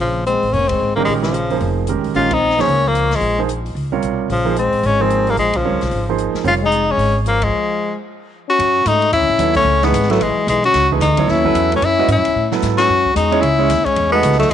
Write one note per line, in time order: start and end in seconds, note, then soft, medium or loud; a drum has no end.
0.00 0.40 A#1 medium
0.00 0.24 C#3 medium
0.00 0.25 F3 medium
0.26 0.55 G#3 medium
0.26 0.55 C4 medium
0.26 closed hi-hat soft
0.43 0.52 A1 medium
0.43 open hi-hat soft
0.53 0.78 F1 medium
0.53 0.71 A#3 medium
0.53 0.70 C#4 medium
0.53 open hi-hat soft
0.68 0.95 G#3 medium
0.68 0.95 C4 medium
0.68 kick medium
0.68 ride medium
0.80 1.05 G#1 medium
0.96 1.32 D#3 medium
0.96 1.06 G3 medium
0.96 1.32 G#3 medium
0.96 1.04 A#3 medium
0.96 1.32 C#4 medium
0.96 1.32 G4 medium
0.96 1.32 A#4 medium
1.05 1.58 A#1 medium
1.05 1.15 F3 medium
1.05 1.13 G#3 medium
1.05 open hi-hat soft
1.22 1.72 C#3 medium
1.22 1.73 F3 medium
1.22 snare medium
1.34 closed hi-hat soft
1.50 1.85 F3 medium
1.50 1.86 A#3 soft
1.50 1.86 D#4 soft
1.50 1.86 G#4 soft
1.50 1.86 C5 medium
1.50 open hi-hat soft
1.60 1.94 F1 medium
1.60 open hi-hat soft
1.87 2.14 D#3 soft
1.87 2.14 G#3 soft
1.87 2.15 C#4 soft
1.87 2.14 G4 soft
1.87 2.15 A#4 medium
1.87 closed hi-hat soft
1.97 2.05 A#1 soft
2.04 2.14 B1 medium
2.04 open hi-hat soft
2.14 2.65 A#1 medium
2.14 2.30 D#3 medium
2.14 2.30 G#3 soft
2.14 2.32 C#4 medium
2.14 2.30 C#4 soft
2.14 2.35 F4 medium
2.14 2.30 G4 soft
2.14 2.30 A#4 medium
2.14 open hi-hat soft
2.31 2.59 C4 medium
2.31 2.63 D#4 medium
2.31 kick medium
2.31 ride medium
2.50 snare soft
2.58 2.67 F3 medium
2.58 2.88 A#3 medium
2.58 2.68 A#3 medium
2.58 2.90 C#4 medium
2.58 2.67 D#4 soft
2.58 2.68 G#4 medium
2.58 2.68 C5 medium
2.58 snare soft
2.58 open hi-hat soft
2.68 3.19 C#2 medium
2.68 open hi-hat soft
2.87 3.12 F3 medium
2.87 3.17 A#3 medium
2.95 closed hi-hat soft
3.11 3.38 F3 medium
3.11 snare soft
3.11 open hi-hat soft
3.16 3.40 G#3 medium
3.21 3.72 A#1 medium
3.21 open hi-hat soft
3.39 3.48 F3 medium
3.39 3.48 A#3 medium
3.39 3.48 D#4 medium
3.39 3.48 G#4 medium
3.39 3.48 C5 medium
3.49 closed hi-hat medium
3.66 open hi-hat soft
3.75 4.00 C#2 medium
3.75 open hi-hat soft
3.92 4.27 C3 medium
3.92 4.27 G3 medium
3.92 4.28 F4 medium
3.92 4.28 A#4 medium
3.92 4.28 C#5 medium
4.02 4.27 B1 medium
4.02 closed hi-hat soft
4.29 4.70 A#1 medium
4.29 4.54 C#3 medium
4.29 4.56 F3 medium
4.29 open hi-hat soft
4.45 4.55 F3 medium
4.45 4.55 A#3 medium
4.45 4.55 D#4 medium
4.45 4.55 G#4 medium
4.45 4.55 C5 medium
4.56 4.85 G#3 medium
4.56 4.88 C4 medium
4.56 closed hi-hat soft
4.73 4.82 A1 medium
4.73 open hi-hat soft
4.83 5.34 G#1 medium
4.83 5.01 G#3 medium
4.83 5.03 C#4 medium
4.83 open hi-hat soft
5.00 5.35 F3 medium
5.00 5.29 G#3 medium
5.00 5.35 A#3 medium
5.00 5.32 C4 medium
5.00 5.35 D#4 medium
5.00 5.35 G#4 medium
5.00 5.35 C5 medium
5.10 closed hi-hat soft
5.27 5.37 G3 medium
5.27 5.39 A#3 medium
5.27 open hi-hat soft
5.37 5.70 A#1 medium
5.37 5.57 F3 medium
5.37 5.58 G#3 medium
5.37 open hi-hat soft
5.53 6.08 C#3 medium
5.53 6.09 F3 medium
5.53 kick medium
5.53 ride medium
5.64 5.79 G3 medium
5.64 5.79 C4 medium
5.64 5.79 F4 soft
5.64 5.79 A#4 medium
5.64 5.79 C#5 medium
5.73 5.81 C#2 medium
5.81 5.90 B1 medium
5.81 snare soft
5.81 open hi-hat soft
5.91 6.31 G#1 medium
5.91 open hi-hat soft
6.09 6.43 F3 medium
6.09 6.43 A#3 medium
6.09 6.43 D#4 medium
6.09 6.43 G#4 medium
6.09 6.44 C5 medium
6.18 closed hi-hat soft
6.34 muted upright bass stroke soft
6.34 snare soft
6.44 6.95 F1 medium
6.44 6.59 G3 medium
6.44 6.59 C4 soft
6.44 6.53 C#4 medium
6.44 6.59 F4 soft
6.44 6.54 F4 medium
6.44 6.59 A#4 soft
6.44 6.59 C#5 medium
6.44 open hi-hat soft
6.62 6.87 G#3 medium
6.66 6.93 D#4 medium
6.72 closed hi-hat soft
6.87 7.14 G#3 medium
6.92 7.16 C#4 medium
6.98 7.49 G#1 medium
6.98 open hi-hat soft
7.25 7.42 F3 medium
7.25 7.45 A#3 medium
7.25 closed hi-hat soft
7.42 7.95 F3 medium
7.42 7.96 G#3 medium
7.42 kick medium
7.42 ride medium
8.48 8.87 C#4 medium
8.48 8.89 F#4 medium
8.59 8.85 F#2 medium
8.59 ride medium
8.85 9.11 G#2 medium
8.85 9.12 A3 medium
8.85 9.13 D#4 loud
8.85 hi-hat pedal medium
8.85 ride medium
9.02 ride soft
9.12 9.21 E2 medium
9.12 9.53 C#4 medium
9.12 9.53 E4 loud
9.12 ride medium
9.21 9.29 C#2 soft
9.30 9.38 A1 medium
9.38 9.64 D#2 medium
9.38 9.54 F#3 medium
9.38 9.54 B3 medium
9.38 9.54 E4 medium
9.38 9.54 A4 medium
9.38 9.54 C#5 medium
9.38 hi-hat pedal soft
9.38 ride medium
9.55 9.84 A3 medium
9.55 9.86 C#4 medium
9.55 kick medium
9.55 crash medium
9.65 9.92 C#2 medium
9.82 9.92 E3 medium
9.82 10.11 G#3 medium
9.82 9.92 A3 medium
9.82 10.13 B3 medium
9.82 9.92 D#4 medium
9.82 9.92 G#4 medium
9.82 9.93 B4 medium
9.82 snare medium
9.82 ride soft
9.92 10.19 G#1 medium
9.92 hi-hat pedal medium
9.92 ride medium
10.03 snare soft
10.10 10.23 F#3 medium
10.10 10.19 F#3 medium
10.10 10.23 A3 medium
10.10 10.20 B3 medium
10.10 10.20 E4 medium
10.10 10.20 A4 medium
10.10 10.20 B4 medium
10.10 snare soft
10.10 ride soft
10.20 10.35 A1 medium
10.20 10.47 E3 medium
10.20 10.48 G#3 medium
10.20 ride medium
10.36 muted upright bass stroke soft
10.47 10.73 B1 medium
10.47 10.63 E3 medium
10.47 10.63 G#3 medium
10.47 hi-hat pedal soft
10.47 ride medium
10.64 10.89 C#4 medium
10.64 10.89 F#4 loud
10.64 ride soft
10.74 11.00 C#2 medium
10.74 snare soft
10.74 ride medium
10.91 11.00 E3 medium
10.91 11.00 A3 medium
10.91 11.01 D#4 medium
10.91 11.01 G#4 medium
10.91 11.01 B4 medium
10.91 kick medium
11.00 11.27 D2 loud
11.00 11.30 A3 medium
11.00 11.32 D#4 medium
11.00 snare soft
11.00 hi-hat pedal medium
11.00 ride medium
11.17 11.43 F#3 medium
11.17 11.43 B3 medium
11.17 11.43 E4 medium
11.17 11.43 A4 medium
11.17 11.43 C#5 medium
11.17 kick soft
11.17 ride medium
11.28 11.54 D#2 medium
11.28 11.71 C#4 medium
11.28 11.72 E4 medium
11.28 snare soft
11.44 11.79 F#3 medium
11.44 11.79 B3 medium
11.44 11.80 E4 medium
11.44 11.80 A4 medium
11.44 11.80 B4 medium
11.44 kick medium
11.55 11.81 E2 medium
11.55 hi-hat pedal medium
11.55 ride medium
11.72 11.84 A3 medium
11.72 ride soft
11.76 11.86 C#4 medium
11.82 12.07 F#2 medium
11.82 12.09 C#4 medium
11.82 12.10 E4 medium
11.82 ride medium
11.99 12.08 G#3 medium
11.99 12.08 C#4 medium
11.99 12.08 F#4 medium
11.99 12.08 B4 medium
11.99 12.08 D#5 medium
12.08 12.17 G#2 medium
12.08 12.49 C#4 medium
12.08 hi-hat pedal medium
12.08 ride medium
12.12 12.50 E4 medium
12.17 12.26 F#2 soft
12.25 12.35 E2 medium
12.25 ride medium
12.36 12.61 A2 medium
12.52 12.87 F#3 medium
12.52 12.87 B3 medium
12.52 12.87 E4 medium
12.52 12.87 A4 medium
12.52 12.87 B4 medium
12.52 snare medium
12.62 12.88 G#2 medium
12.62 snare medium
12.62 hi-hat pedal medium
12.78 13.13 C#4 medium
12.78 13.13 F#4 loud
12.78 snare medium
12.78 ride medium
12.89 13.15 F#2 medium
13.05 kick medium
13.14 13.42 E2 medium
13.14 13.43 G#3 medium
13.14 13.43 D#4 medium
13.14 hi-hat pedal medium
13.14 ride medium
13.32 13.41 G#3 medium
13.32 13.41 C#4 medium
13.32 13.41 E4 medium
13.32 13.41 G#4 medium
13.32 13.42 C#5 medium
13.32 ride soft
13.41 13.68 C#2 medium
13.41 13.85 C#4 medium
13.41 13.87 E4 medium
13.41 ride medium
13.59 13.68 G#3 medium
13.59 13.68 C#4 medium
13.59 13.68 E4 medium
13.59 13.68 G#4 medium
13.59 13.69 C#5 medium
13.70 13.85 D#2 medium
13.70 snare soft
13.70 hi-hat pedal medium
13.70 ride medium
13.84 14.09 G#3 medium
13.84 14.12 C#4 medium
13.84 muted upright bass stroke soft
13.84 kick medium
13.84 ride soft
13.96 14.22 E2 medium
13.96 ride medium
14.10 14.36 G#3 medium
14.10 14.47 A3 medium
14.10 14.37 B3 medium
14.10 14.48 D#4 medium
14.10 14.47 F#4 medium
14.10 14.48 A4 medium
14.10 14.48 D#5 medium
14.23 14.49 C#2 medium
14.23 hi-hat pedal medium
14.23 ride medium
14.32 snare soft
14.37 14.50 F#3 medium
14.37 14.52 A3 medium
14.37 ride soft
14.41 snare soft
14.49 14.54 B1 medium
14.49 14.54 E3 medium
14.49 14.54 G#3 medium